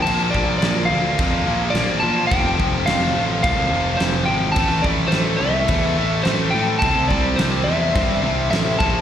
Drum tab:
CC |x-x-x-x-|x-x-x-x-|x-x-x-x-|x-x-x-x-|
SD |--o---o-|--o---o-|--o---o-|--o---o-|
BD |-o--o---|oo--o---|oo--o---|oo--o--o|